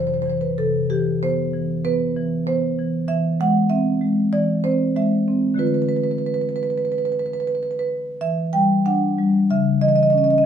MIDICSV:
0, 0, Header, 1, 2, 480
1, 0, Start_track
1, 0, Tempo, 636943
1, 435, Time_signature, 4, 2, 24, 8
1, 1399, Tempo, 619195
1, 3319, Tempo, 645161
1, 7876, End_track
2, 0, Start_track
2, 0, Title_t, "Marimba"
2, 0, Program_c, 0, 12
2, 0, Note_on_c, 0, 41, 56
2, 0, Note_on_c, 0, 48, 39
2, 0, Note_on_c, 0, 52, 46
2, 1, Note_on_c, 0, 72, 63
2, 52, Note_off_c, 0, 72, 0
2, 52, Note_on_c, 0, 72, 64
2, 100, Note_off_c, 0, 52, 0
2, 103, Note_off_c, 0, 72, 0
2, 103, Note_on_c, 0, 72, 59
2, 166, Note_off_c, 0, 72, 0
2, 166, Note_on_c, 0, 72, 67
2, 195, Note_on_c, 0, 52, 42
2, 224, Note_off_c, 0, 72, 0
2, 224, Note_on_c, 0, 72, 57
2, 292, Note_off_c, 0, 72, 0
2, 310, Note_on_c, 0, 71, 65
2, 336, Note_off_c, 0, 48, 0
2, 409, Note_off_c, 0, 41, 0
2, 432, Note_off_c, 0, 71, 0
2, 434, Note_off_c, 0, 52, 0
2, 437, Note_on_c, 0, 48, 53
2, 438, Note_on_c, 0, 69, 77
2, 672, Note_off_c, 0, 69, 0
2, 678, Note_on_c, 0, 67, 75
2, 680, Note_on_c, 0, 52, 50
2, 915, Note_off_c, 0, 67, 0
2, 924, Note_on_c, 0, 59, 42
2, 925, Note_on_c, 0, 72, 83
2, 1070, Note_off_c, 0, 52, 0
2, 1160, Note_on_c, 0, 52, 52
2, 1304, Note_off_c, 0, 59, 0
2, 1371, Note_off_c, 0, 48, 0
2, 1380, Note_off_c, 0, 72, 0
2, 1392, Note_on_c, 0, 71, 91
2, 1393, Note_on_c, 0, 59, 53
2, 1541, Note_off_c, 0, 52, 0
2, 1638, Note_on_c, 0, 52, 52
2, 1781, Note_off_c, 0, 59, 0
2, 1858, Note_off_c, 0, 71, 0
2, 1874, Note_on_c, 0, 72, 86
2, 1878, Note_on_c, 0, 59, 49
2, 2024, Note_off_c, 0, 52, 0
2, 2123, Note_on_c, 0, 52, 50
2, 2262, Note_off_c, 0, 59, 0
2, 2336, Note_off_c, 0, 72, 0
2, 2339, Note_off_c, 0, 52, 0
2, 2348, Note_on_c, 0, 52, 63
2, 2349, Note_on_c, 0, 76, 85
2, 2580, Note_off_c, 0, 76, 0
2, 2597, Note_on_c, 0, 56, 53
2, 2601, Note_on_c, 0, 78, 92
2, 2825, Note_on_c, 0, 76, 81
2, 2827, Note_off_c, 0, 78, 0
2, 2828, Note_on_c, 0, 60, 49
2, 2979, Note_off_c, 0, 56, 0
2, 3071, Note_on_c, 0, 56, 48
2, 3218, Note_off_c, 0, 60, 0
2, 3284, Note_off_c, 0, 52, 0
2, 3295, Note_off_c, 0, 76, 0
2, 3314, Note_on_c, 0, 74, 95
2, 3315, Note_on_c, 0, 52, 54
2, 3458, Note_off_c, 0, 56, 0
2, 3543, Note_off_c, 0, 74, 0
2, 3546, Note_on_c, 0, 72, 85
2, 3547, Note_on_c, 0, 60, 49
2, 3779, Note_off_c, 0, 72, 0
2, 3787, Note_on_c, 0, 56, 49
2, 3788, Note_on_c, 0, 76, 78
2, 3932, Note_off_c, 0, 60, 0
2, 4024, Note_on_c, 0, 60, 47
2, 4171, Note_off_c, 0, 56, 0
2, 4220, Note_on_c, 0, 50, 55
2, 4231, Note_on_c, 0, 57, 39
2, 4240, Note_off_c, 0, 52, 0
2, 4243, Note_on_c, 0, 65, 43
2, 4248, Note_off_c, 0, 76, 0
2, 4255, Note_on_c, 0, 71, 74
2, 4266, Note_off_c, 0, 60, 0
2, 4312, Note_off_c, 0, 71, 0
2, 4312, Note_on_c, 0, 71, 56
2, 4368, Note_off_c, 0, 71, 0
2, 4368, Note_on_c, 0, 71, 62
2, 4425, Note_off_c, 0, 71, 0
2, 4425, Note_on_c, 0, 71, 57
2, 4475, Note_off_c, 0, 71, 0
2, 4475, Note_on_c, 0, 71, 65
2, 4533, Note_off_c, 0, 71, 0
2, 4533, Note_on_c, 0, 71, 59
2, 4586, Note_off_c, 0, 71, 0
2, 4586, Note_on_c, 0, 71, 65
2, 4643, Note_off_c, 0, 71, 0
2, 4643, Note_on_c, 0, 71, 61
2, 4696, Note_off_c, 0, 71, 0
2, 4696, Note_on_c, 0, 71, 62
2, 4756, Note_off_c, 0, 71, 0
2, 4756, Note_on_c, 0, 71, 57
2, 4812, Note_off_c, 0, 71, 0
2, 4812, Note_on_c, 0, 71, 68
2, 4867, Note_off_c, 0, 71, 0
2, 4867, Note_on_c, 0, 71, 58
2, 4922, Note_off_c, 0, 71, 0
2, 4922, Note_on_c, 0, 71, 62
2, 4975, Note_off_c, 0, 71, 0
2, 4975, Note_on_c, 0, 71, 63
2, 5027, Note_off_c, 0, 71, 0
2, 5027, Note_on_c, 0, 71, 67
2, 5080, Note_off_c, 0, 71, 0
2, 5080, Note_on_c, 0, 71, 57
2, 5136, Note_off_c, 0, 71, 0
2, 5136, Note_on_c, 0, 71, 66
2, 5191, Note_off_c, 0, 71, 0
2, 5191, Note_on_c, 0, 71, 59
2, 5242, Note_off_c, 0, 71, 0
2, 5242, Note_on_c, 0, 71, 66
2, 5290, Note_off_c, 0, 71, 0
2, 5290, Note_on_c, 0, 71, 60
2, 5343, Note_off_c, 0, 71, 0
2, 5343, Note_on_c, 0, 71, 67
2, 5392, Note_off_c, 0, 71, 0
2, 5392, Note_on_c, 0, 71, 61
2, 5447, Note_off_c, 0, 71, 0
2, 5447, Note_on_c, 0, 71, 65
2, 5496, Note_off_c, 0, 71, 0
2, 5496, Note_on_c, 0, 71, 61
2, 5552, Note_off_c, 0, 71, 0
2, 5552, Note_on_c, 0, 71, 63
2, 5601, Note_off_c, 0, 71, 0
2, 5601, Note_on_c, 0, 71, 61
2, 5656, Note_off_c, 0, 71, 0
2, 5656, Note_on_c, 0, 71, 66
2, 5711, Note_off_c, 0, 71, 0
2, 5711, Note_on_c, 0, 71, 59
2, 5769, Note_off_c, 0, 71, 0
2, 5769, Note_on_c, 0, 71, 63
2, 5831, Note_off_c, 0, 71, 0
2, 5831, Note_on_c, 0, 71, 56
2, 5891, Note_off_c, 0, 71, 0
2, 5891, Note_on_c, 0, 71, 67
2, 5934, Note_off_c, 0, 71, 0
2, 6158, Note_off_c, 0, 50, 0
2, 6164, Note_off_c, 0, 57, 0
2, 6170, Note_off_c, 0, 65, 0
2, 6204, Note_on_c, 0, 52, 57
2, 6204, Note_on_c, 0, 76, 90
2, 6440, Note_off_c, 0, 76, 0
2, 6441, Note_on_c, 0, 79, 84
2, 6444, Note_on_c, 0, 55, 48
2, 6679, Note_off_c, 0, 79, 0
2, 6683, Note_on_c, 0, 62, 47
2, 6686, Note_on_c, 0, 78, 84
2, 6834, Note_off_c, 0, 55, 0
2, 6930, Note_on_c, 0, 55, 48
2, 7071, Note_off_c, 0, 62, 0
2, 7138, Note_off_c, 0, 52, 0
2, 7148, Note_off_c, 0, 78, 0
2, 7167, Note_on_c, 0, 49, 66
2, 7167, Note_on_c, 0, 76, 88
2, 7170, Note_off_c, 0, 55, 0
2, 7396, Note_off_c, 0, 76, 0
2, 7397, Note_on_c, 0, 52, 47
2, 7397, Note_on_c, 0, 75, 88
2, 7449, Note_off_c, 0, 75, 0
2, 7449, Note_on_c, 0, 75, 70
2, 7502, Note_off_c, 0, 75, 0
2, 7502, Note_on_c, 0, 75, 72
2, 7557, Note_off_c, 0, 75, 0
2, 7557, Note_on_c, 0, 75, 71
2, 7611, Note_off_c, 0, 75, 0
2, 7611, Note_on_c, 0, 75, 75
2, 7630, Note_on_c, 0, 61, 45
2, 7666, Note_off_c, 0, 75, 0
2, 7666, Note_on_c, 0, 75, 73
2, 7714, Note_off_c, 0, 75, 0
2, 7714, Note_on_c, 0, 75, 74
2, 7762, Note_off_c, 0, 75, 0
2, 7762, Note_on_c, 0, 75, 71
2, 7778, Note_off_c, 0, 52, 0
2, 7818, Note_off_c, 0, 75, 0
2, 7818, Note_on_c, 0, 75, 75
2, 7876, Note_off_c, 0, 49, 0
2, 7876, Note_off_c, 0, 61, 0
2, 7876, Note_off_c, 0, 75, 0
2, 7876, End_track
0, 0, End_of_file